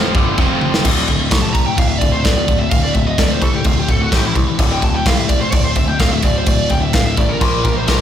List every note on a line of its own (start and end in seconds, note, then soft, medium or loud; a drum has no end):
0.00 0.11 F1 medium
0.00 0.14 F2 medium
0.00 0.14 C3 medium
0.00 0.14 F3 medium
0.00 0.15 F3 medium
0.00 0.14 C4 medium
0.00 0.14 G4 medium
0.15 0.36 G1 medium
0.15 0.37 G2 medium
0.15 0.37 D3 medium
0.15 0.39 D3 medium
0.15 0.38 G3 loud
0.15 0.38 A3 medium
0.15 0.38 E4 medium
0.15 kick loud
0.37 0.81 F1 loud
0.37 0.83 F2 loud
0.37 0.84 C3 loud
0.37 0.84 F3 medium
0.37 0.84 F3 loud
0.37 0.84 C4 medium
0.37 0.83 G4 medium
0.37 kick loud
0.37 china medium
0.61 high tom medium
0.74 snare loud
0.84 1.04 D1 loud
0.84 1.06 D2 medium
0.84 1.06 A2 medium
0.84 1.07 D3 medium
0.84 kick loud
0.84 crash loud
0.84 crash medium
1.08 1.28 D1 medium
1.08 1.19 D2 medium
1.08 1.18 A2 medium
1.08 kick medium
1.08 crash medium
1.19 1.30 D2 medium
1.19 1.30 A2 medium
1.31 1.70 C2 medium
1.31 1.52 D2 medium
1.31 1.52 A2 medium
1.31 kick loud
1.31 snare loud
1.31 crash medium
1.42 1.53 A5 medium
1.53 1.65 D2 medium
1.53 1.65 A2 medium
1.53 1.66 A#5 loud
1.53 kick medium
1.53 crash medium
1.66 1.77 D2 medium
1.66 1.77 A2 medium
1.66 1.77 G5 loud
1.77 1.97 D1 medium
1.77 1.99 D2 medium
1.77 1.99 A2 medium
1.77 1.87 F5 medium
1.77 kick loud
1.77 crash medium
1.88 1.98 E5 medium
1.98 2.21 D1 medium
1.98 2.13 D2 medium
1.98 2.12 A2 medium
1.98 2.11 D5 medium
1.98 kick medium
1.98 crash medium
2.12 2.23 D2 medium
2.12 2.23 A2 medium
2.12 2.24 C5 medium
2.24 2.44 D1 medium
2.24 2.36 D2 medium
2.24 2.36 A2 medium
2.24 2.57 D5 medium
2.24 kick loud
2.24 snare loud
2.24 crash medium
2.37 2.47 D2 medium
2.37 2.47 A2 medium
2.48 2.68 D1 medium
2.48 2.59 D2 medium
2.48 2.59 A2 medium
2.48 kick medium
2.48 crash medium
2.59 2.70 D2 medium
2.59 2.70 A2 medium
2.59 2.70 E5 medium
2.71 2.91 D1 medium
2.71 2.92 D2 medium
2.71 2.93 A2 medium
2.71 2.83 F5 medium
2.71 kick loud
2.71 crash medium
2.83 2.94 D5 medium
2.94 3.15 D1 medium
2.94 3.06 D2 medium
2.94 3.05 A2 medium
2.94 3.06 E5 medium
2.94 kick medium
2.94 crash soft
3.06 3.17 D2 medium
3.06 3.17 A2 medium
3.06 3.18 D#5 medium
3.18 3.38 D1 medium
3.18 3.39 D2 medium
3.18 3.40 A2 medium
3.18 3.30 D5 medium
3.18 kick loud
3.18 snare loud
3.18 crash medium
3.31 3.42 C5 medium
3.42 3.62 C2 medium
3.42 3.53 D2 medium
3.42 3.53 A2 medium
3.42 3.54 A4 medium
3.42 kick medium
3.42 crash medium
3.54 3.64 D2 medium
3.54 3.65 A2 medium
3.54 3.65 G4 medium
3.64 3.85 D1 medium
3.64 3.87 D2 medium
3.64 3.87 A2 loud
3.64 3.79 F4 medium
3.64 kick loud
3.64 crash medium
3.79 3.89 G4 medium
3.88 4.08 D1 medium
3.88 3.99 D2 medium
3.88 3.99 A2 medium
3.88 4.01 A4 loud
3.88 kick medium
3.88 crash medium
4.00 4.11 D2 medium
4.00 4.11 A2 medium
4.00 4.13 F#4 medium
4.12 4.32 A1 medium
4.12 4.22 A2 loud
4.12 4.22 E3 medium
4.12 4.23 A3 loud
4.12 4.24 G4 loud
4.12 kick loud
4.12 snare loud
4.12 crash medium
4.23 4.35 A2 medium
4.23 4.34 E3 medium
4.23 4.33 E4 medium
4.35 4.55 C2 medium
4.35 4.46 A2 medium
4.35 4.46 E3 medium
4.35 kick medium
4.35 crash medium
4.47 4.58 A2 medium
4.47 4.59 E3 medium
4.59 4.79 D1 loud
4.59 4.81 D2 medium
4.59 4.81 A2 medium
4.59 4.82 D3 loud
4.59 kick loud
4.59 crash medium
4.72 4.83 G5 medium
4.82 5.02 D1 medium
4.82 4.93 D2 medium
4.82 4.93 A2 medium
4.82 4.95 A5 loud
4.82 kick medium
4.82 crash medium
4.94 5.05 D2 medium
4.94 5.05 A2 medium
4.94 5.07 G5 medium
5.06 5.45 C2 medium
5.06 5.27 D2 medium
5.06 5.27 A2 medium
5.06 5.17 F5 medium
5.06 kick loud
5.06 snare loud
5.06 crash medium
5.17 5.29 E5 medium
5.29 5.40 D2 medium
5.29 5.39 A2 medium
5.29 5.41 D5 medium
5.29 kick loud
5.29 crash medium
5.41 5.52 D2 medium
5.41 5.53 A2 medium
5.41 5.53 C5 medium
5.52 5.73 D1 loud
5.52 5.74 D2 medium
5.52 5.75 A2 medium
5.52 5.64 D5 medium
5.52 kick loud
5.52 crash medium
5.64 5.76 C5 medium
5.75 5.96 D1 medium
5.75 5.87 D2 medium
5.75 5.87 A2 medium
5.75 5.88 E5 medium
5.75 kick medium
5.75 crash medium
5.88 5.99 D2 medium
5.88 6.00 A2 medium
5.88 5.99 G5 medium
6.00 6.20 D1 medium
6.00 6.11 D2 medium
6.00 6.11 A2 medium
6.00 6.11 F5 medium
6.00 kick loud
6.00 snare loud
6.00 crash medium
6.12 6.23 D2 medium
6.12 6.22 A2 medium
6.12 6.24 E5 medium
6.22 6.43 D1 medium
6.22 6.34 D2 medium
6.22 6.34 A2 medium
6.22 6.37 D5 loud
6.22 kick medium
6.22 crash medium
6.35 6.45 D2 medium
6.35 6.45 A2 medium
6.35 6.48 C5 medium
6.46 6.66 D1 medium
6.46 6.68 D2 medium
6.46 6.68 A2 medium
6.46 6.71 D5 medium
6.46 kick loud
6.46 crash medium
6.69 6.90 D1 medium
6.69 6.80 D2 medium
6.69 6.79 A2 medium
6.69 6.82 G5 loud
6.69 kick medium
6.69 crash soft
6.81 6.92 D2 medium
6.81 6.92 A2 medium
6.81 6.93 E5 medium
6.93 7.14 D1 medium
6.93 7.15 D2 medium
6.93 7.15 A2 loud
6.93 7.05 F5 medium
6.93 kick loud
6.93 snare loud
6.93 crash medium
7.06 7.17 E5 medium
7.17 7.37 A1 medium
7.17 7.28 D2 medium
7.17 7.27 A2 medium
7.17 7.29 D5 medium
7.17 kick loud
7.17 crash medium
7.29 7.39 D2 medium
7.29 7.40 A2 medium
7.29 7.73 A#4 medium
7.40 7.61 A#1 loud
7.40 7.63 A#2 medium
7.40 7.63 F3 loud
7.40 7.63 A#3 medium
7.40 kick loud
7.40 crash medium
7.64 7.84 A#1 medium
7.64 7.75 A#2 medium
7.64 7.74 F3 medium
7.64 kick medium
7.64 crash medium
7.76 7.85 A#2 medium
7.76 7.86 F3 medium
7.76 7.88 C5 medium
7.87 8.01 A#1 medium
7.87 7.98 A#2 medium
7.87 7.98 F3 medium
7.87 7.99 A#3 loud
7.87 8.00 A#4 medium
7.87 kick loud
7.87 snare loud
7.87 crash medium